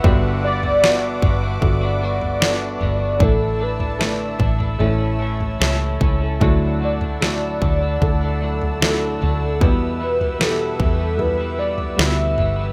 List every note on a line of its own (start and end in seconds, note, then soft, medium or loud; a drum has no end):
0.00 1.18 G2 medium
0.00 1.18 D3 medium
0.00 0.42 G3 medium
0.00 0.79 B3 medium
0.00 0.79 D4 medium
0.00 0.79 F#4 medium
0.00 3.16 B4 medium
0.00 3.16 E5 medium
0.00 3.16 F#5 medium
0.04 1.19 G1 medium
0.04 0.43 B3 medium
0.04 0.44 D4 medium
0.04 0.44 F#4 medium
0.04 0.79 G4 loud
0.04 3.18 D6 medium
0.04 kick loud
0.04 floor tom loud
0.43 0.63 G3 medium
0.43 0.64 B3 medium
0.43 0.63 D4 medium
0.43 0.62 F#4 medium
0.43 1.19 D5 loud
0.63 0.83 B3 soft
0.63 0.84 D4 soft
0.63 0.83 F#4 medium
0.63 floor tom medium
0.82 1.20 G3 medium
0.82 1.57 B3 medium
0.82 1.22 B3 medium
0.82 1.58 D4 medium
0.82 1.23 D4 medium
0.82 1.58 F#4 medium
0.82 1.24 F#4 medium
0.82 1.58 G4 medium
0.82 snare loud
1.22 1.59 G1 medium
1.22 1.42 G3 soft
1.22 1.43 B3 medium
1.22 1.42 D4 medium
1.22 1.41 F#4 medium
1.22 kick medium
1.42 1.83 B3 soft
1.42 1.82 D4 medium
1.42 1.80 F#4 medium
1.60 2.76 G1 loud
1.60 2.36 B3 medium
1.60 2.36 D4 medium
1.60 2.36 F#4 medium
1.60 2.37 A4 medium
1.60 3.24 D5 loud
1.60 kick medium
1.60 floor tom medium
1.81 2.01 B3 medium
1.81 2.02 D4 medium
1.81 2.01 F#4 medium
2.01 2.39 G3 medium
2.01 2.40 B3 medium
2.01 2.41 D4 medium
2.01 2.41 F#4 medium
2.21 floor tom medium
2.40 2.78 G3 medium
2.40 3.16 B3 medium
2.40 2.80 B3 medium
2.40 3.16 D4 medium
2.40 2.81 D4 medium
2.40 3.16 F#4 medium
2.40 2.81 F#4 medium
2.40 3.16 A4 medium
2.40 snare loud
2.80 3.18 G1 medium
2.80 3.00 G3 medium
2.80 3.01 B3 medium
2.80 3.00 D4 medium
2.80 2.98 F#4 medium
2.80 floor tom medium
2.99 3.21 B3 soft
2.99 3.20 D4 soft
2.99 3.20 F#4 soft
3.19 4.36 A1 medium
3.19 3.60 A2 medium
3.19 4.35 A2 medium
3.19 3.58 D3 medium
3.19 4.35 E3 medium
3.19 3.95 A3 medium
3.19 3.59 A3 medium
3.19 3.95 D4 medium
3.19 3.60 D4 medium
3.19 3.96 E4 medium
3.19 3.61 E4 medium
3.19 3.96 A4 medium
3.19 3.64 A4 loud
3.19 4.78 D5 medium
3.19 6.38 E5 medium
3.19 4.78 A5 medium
3.19 6.38 E6 medium
3.19 kick loud
3.19 floor tom loud
3.59 3.79 D3 medium
3.59 3.80 A3 medium
3.59 3.79 D4 medium
3.59 3.77 E4 medium
3.63 4.41 B4 medium
3.79 3.99 A3 soft
3.79 4.00 D4 soft
3.79 3.99 E4 soft
3.79 floor tom medium
3.99 4.39 A2 medium
3.99 4.38 D3 medium
3.99 4.75 A3 medium
3.99 4.39 A3 medium
3.99 4.75 D4 medium
3.99 4.40 D4 medium
3.99 4.75 E4 medium
3.99 4.40 E4 medium
3.99 4.76 A4 medium
3.99 snare medium
4.39 4.77 A1 medium
4.39 4.59 D3 medium
4.39 4.60 A3 medium
4.39 4.59 D4 medium
4.39 4.57 E4 medium
4.39 kick medium
4.39 floor tom medium
4.59 4.79 A3 soft
4.59 4.80 D4 soft
4.59 4.79 E4 medium
4.59 floor tom medium
4.78 5.57 A1 loud
4.78 4.99 A2 medium
4.78 5.97 A2 medium
4.78 5.97 E3 medium
4.78 5.00 E3 medium
4.78 5.56 A3 medium
4.78 5.00 A3 medium
4.78 5.56 C#4 medium
4.78 4.99 C#4 medium
4.78 5.56 E4 medium
4.78 4.97 E4 medium
4.78 5.57 A4 medium
4.78 6.39 C#5 medium
4.78 9.57 A5 medium
4.78 floor tom medium
4.98 5.19 A3 medium
4.98 5.20 C#4 medium
4.98 5.19 E4 medium
5.19 5.59 E3 medium
5.19 5.59 A3 medium
5.19 5.60 C#4 medium
5.19 5.60 E4 medium
5.40 floor tom medium
5.60 5.98 C#2 medium
5.60 6.00 A2 medium
5.60 5.98 E3 medium
5.60 6.00 A3 medium
5.60 6.00 C#4 medium
5.60 6.02 E4 medium
5.60 5.99 G4 soft
5.60 5.99 E5 medium
5.60 snare loud
6.00 6.39 C#2 medium
6.00 6.21 E3 medium
6.00 6.21 A3 medium
6.00 6.21 C#4 medium
6.00 6.20 E4 medium
6.00 6.19 E4 medium
6.00 6.20 C#5 medium
6.00 kick medium
6.00 floor tom medium
6.20 6.41 A3 soft
6.20 6.60 C#4 soft
6.20 6.42 C#4 soft
6.20 6.41 E4 medium
6.20 6.60 A4 medium
6.40 7.58 D2 medium
6.40 7.57 A2 medium
6.40 6.81 D3 medium
6.40 6.80 F#3 medium
6.40 7.17 A3 medium
6.40 6.81 A3 medium
6.40 7.17 D4 medium
6.40 6.82 D4 medium
6.40 7.17 E4 medium
6.40 6.83 E4 medium
6.40 7.18 F#4 medium
6.40 9.58 D5 medium
6.40 9.58 F#5 medium
6.40 12.73 E6 medium
6.40 kick loud
6.40 floor tom loud
6.81 7.01 F#3 medium
6.81 7.02 A3 medium
6.81 7.01 D4 medium
6.81 6.99 E4 medium
6.81 6.98 D5 medium
7.01 7.21 A3 soft
7.01 7.21 D4 soft
7.01 7.21 E4 medium
7.01 floor tom medium
7.21 7.61 D3 medium
7.21 7.60 F#3 medium
7.21 7.97 A3 medium
7.21 7.61 A3 medium
7.21 7.97 D4 medium
7.21 7.62 D4 medium
7.21 7.97 E4 medium
7.21 7.62 E4 medium
7.21 7.98 F#4 medium
7.21 7.99 D5 medium
7.21 snare medium
7.61 7.99 D2 medium
7.61 7.81 F#3 medium
7.61 7.82 A3 medium
7.61 7.81 D4 medium
7.61 7.79 E4 soft
7.61 kick medium
7.81 8.23 A3 soft
7.81 8.22 D4 soft
7.81 8.20 E4 medium
8.00 9.17 D2 loud
8.00 8.77 A3 medium
8.00 8.77 D4 medium
8.00 8.77 E4 medium
8.00 8.77 A4 medium
8.00 9.58 A4 medium
8.00 kick medium
8.00 floor tom medium
8.21 8.41 A3 soft
8.21 8.42 D4 soft
8.21 8.41 E4 medium
8.41 8.80 F#3 medium
8.41 8.81 A3 medium
8.41 8.82 D4 medium
8.41 8.82 E4 medium
8.62 floor tom medium
8.80 9.21 D3 medium
8.80 9.19 F#3 medium
8.80 9.56 A3 medium
8.80 9.21 A3 medium
8.80 9.57 D4 medium
8.80 9.22 D4 medium
8.80 9.57 E4 medium
8.80 9.22 E4 medium
8.80 9.57 F#4 medium
8.80 snare loud
9.21 9.61 D2 medium
9.21 9.41 F#3 medium
9.21 9.41 A3 medium
9.21 9.42 D4 medium
9.21 9.40 E4 medium
9.21 floor tom medium
9.41 9.62 A3 soft
9.41 9.62 D4 soft
9.41 9.61 E4 medium
9.60 10.01 E2 medium
9.60 10.76 E2 loud
9.60 10.76 B2 medium
9.60 10.01 B2 medium
9.60 9.99 E3 medium
9.60 10.36 G3 medium
9.60 10.00 G3 medium
9.60 10.36 B3 medium
9.60 10.01 B3 medium
9.60 10.36 E4 medium
9.60 10.02 E4 medium
9.60 10.36 G4 medium
9.60 12.73 B4 medium
9.60 10.44 B4 loud
9.60 12.73 E5 medium
9.60 kick loud
9.60 floor tom medium
10.00 10.20 E3 medium
10.00 10.21 G3 medium
10.00 10.20 B3 medium
10.00 10.19 E4 medium
10.20 10.40 E3 soft
10.20 10.41 G3 soft
10.20 10.41 B3 soft
10.20 10.40 E4 soft
10.20 floor tom medium
10.39 10.80 E2 medium
10.39 10.80 B2 medium
10.39 10.78 E3 medium
10.39 11.15 G3 medium
10.39 10.79 G3 medium
10.39 11.15 B3 medium
10.39 10.80 B3 medium
10.39 11.15 E4 medium
10.39 10.81 E4 medium
10.39 10.47 F#4 medium
10.39 11.22 A4 loud
10.39 snare medium
10.47 11.19 G4 medium
10.79 11.94 E2 medium
10.79 10.99 E3 medium
10.79 11.00 G3 medium
10.79 10.98 B3 medium
10.79 10.97 E4 medium
10.79 kick medium
10.98 11.40 E3 soft
10.98 11.39 G3 medium
10.98 11.38 B3 medium
10.98 11.37 E4 soft
11.17 11.93 G3 medium
11.17 11.94 B3 medium
11.17 11.94 E4 medium
11.17 11.94 A4 medium
11.17 11.58 B4 loud
11.17 floor tom medium
11.38 11.56 E3 soft
11.38 11.58 G3 soft
11.38 11.59 B3 soft
11.38 11.58 E4 medium
11.57 11.97 E3 medium
11.57 11.98 G3 medium
11.57 11.98 B3 medium
11.57 11.98 E4 medium
11.57 12.02 D5 loud
11.78 floor tom medium
11.97 12.35 D2 loud
11.97 12.37 E2 medium
11.97 12.38 B2 medium
11.97 12.35 E3 loud
11.97 12.73 G3 medium
11.97 12.37 G3 medium
11.97 12.73 B3 medium
11.97 12.38 B3 loud
11.97 12.73 E4 medium
11.97 12.38 E4 medium
11.97 12.73 F#4 medium
11.97 12.59 E5 loud
11.97 snare loud
12.37 12.73 G1 medium
12.37 12.57 E3 medium
12.37 12.58 G3 medium
12.37 12.56 B3 medium
12.37 12.55 E4 medium
12.37 floor tom medium
12.56 12.73 E3 soft
12.56 12.73 G3 medium
12.56 12.73 B3 soft
12.56 12.73 E4 medium